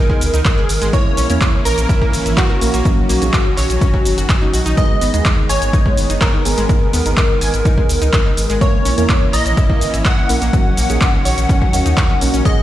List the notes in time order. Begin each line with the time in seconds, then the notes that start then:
Already playing: D#3 G#3 B3 A#4 A#5
0.10 G#3, kick
0.21 C#2, open hi-hat, shaker
0.34 C#2 D#4, closed hi-hat, shaker
0.45 kick, clap, closed hi-hat, shaker
0.58 G#4
0.69 G#1, open hi-hat, shaker
0.82 G#1 G#3, closed hi-hat, shaker
0.93 E3 A#3 C#4 E4 A#4 C#5 C#6, kick, closed hi-hat, shaker
1.17 A#1 C#4, open hi-hat, shaker
1.30 E2 A#3 C#4 E4 A#4, closed hi-hat, shaker
1.41 E4, kick, clap, closed hi-hat, shaker
1.65 A#1 A#4 A#5, open hi-hat, shaker
1.78 A#1, closed hi-hat, shaker
1.89 E4, kick, closed hi-hat, shaker
2.02 A#3, kick
2.13 G#1, open hi-hat, shaker
2.26 G#1 E4, closed hi-hat, shaker
2.37 F#4 F#5, kick, clap, closed hi-hat, shaker
2.50 A#4
2.61 A#1 A#3 C#4 E4 A#4, open hi-hat, shaker
2.74 A#1 A#3, closed hi-hat, shaker
2.85 D#3 F#3 A#3 C#4 D#4 F#4, kick, closed hi-hat, shaker
3.09 A#1 A#3, open hi-hat, shaker
3.22 A#1 A#3 C#4 D#4 G#4, closed hi-hat, shaker
3.33 C#4, kick, clap, closed hi-hat, shaker
3.57 A#1 C#5, clap, open hi-hat, shaker
3.70 A#1, closed hi-hat, shaker
3.81 C#4, kick, closed hi-hat, shaker
3.94 F#3, kick
4.05 F#1, open hi-hat, shaker
4.18 F#1 F#4, closed hi-hat, shaker
4.29 C#4, kick, clap, closed hi-hat, shaker
4.42 D#4
4.53 A#1 F#4, open hi-hat, shaker
4.66 A#1 D#4, closed hi-hat, shaker
4.77 G#3 B3 D#4 G#4 D#5 D#6, kick, closed hi-hat, shaker
5.01 G#1 B3, open hi-hat, shaker
5.14 D#2 G#3 B3 D#4 G#4, closed hi-hat, shaker
5.25 D#4, kick, clap, closed hi-hat, shaker
5.49 G#1 C#5 G#5 C#6, open hi-hat, shaker
5.62 G#1, closed hi-hat, shaker
5.73 D#4, kick, closed hi-hat, shaker
5.86 G#3, kick
5.97 F#1, open hi-hat, shaker
6.10 F#1 D#4, closed hi-hat, shaker
6.21 A#4 A#5, kick, clap, closed hi-hat, shaker
6.34 D#4
6.45 G#1 G#3 B3 D#4 G#4, open hi-hat, shaker
6.58 G#1 G#3, closed hi-hat, shaker
6.69 G#3 B3 D#4 G#4, kick, closed hi-hat, shaker
6.93 D#2 B3, open hi-hat, shaker
7.06 G#1 G#3 B3 D#4 A#4, closed hi-hat, shaker
7.17 D#4, kick, clap, closed hi-hat, shaker
7.41 G#1 G#5, open hi-hat, shaker
7.54 G#1, closed hi-hat, shaker
7.65 D#4, kick, closed hi-hat, shaker
7.78 G#3, kick
7.89 C#2, open hi-hat, shaker
8.02 C#2 D#4, closed hi-hat, shaker
8.13 kick, clap, closed hi-hat, shaker
8.26 D#4
8.37 G#1, open hi-hat, shaker
8.50 G#1 G#3, closed hi-hat, shaker
8.61 E3 A#3 C#4 E4 A#4 C#5 C#6, kick, closed hi-hat, shaker
8.85 A#1 C#4, open hi-hat, shaker
8.98 E2 A#3 C#4 E4 A#4, closed hi-hat, shaker
9.09 E4, kick, clap, closed hi-hat, shaker
9.33 A#1 D#5 A#5 D#6, open hi-hat, shaker
9.46 A#1, closed hi-hat, shaker
9.57 E4, kick, closed hi-hat, shaker
9.70 A#3, kick
9.81 G#1, open hi-hat, shaker
9.94 G#1 E4, closed hi-hat, shaker
10.05 F#5 F#6, kick, clap, closed hi-hat, shaker
10.18 E4
10.29 A#1 A#3 C#4 E4 A#4, open hi-hat, shaker
10.42 A#1 A#3, closed hi-hat, shaker
10.53 D#3 F#3 A#3 C#4 D#4 F#4, kick, closed hi-hat, shaker
10.77 A#1 A#3, open hi-hat, shaker
10.90 A#1 A#3 C#4 D#4 G#4, closed hi-hat, shaker
11.01 C#4, kick, clap, closed hi-hat, shaker
11.25 A#1 C#5, open hi-hat, shaker
11.38 A#1, closed hi-hat, shaker
11.49 C#4, kick, closed hi-hat, shaker
11.62 F#3, kick
11.73 D#2 A#3 C#4 D#4 F#4, open hi-hat, shaker
11.86 D#2 D#4, closed hi-hat, shaker
11.97 kick, clap, closed hi-hat, shaker
12.10 C#4
12.21 A#1 A#3 C#4 D#4 F#4, open hi-hat, shaker
12.34 A#1 C#4, closed hi-hat, shaker
12.45 D#3 G#3 B3 D#4 G#4 D#5 D#6, kick, closed hi-hat, shaker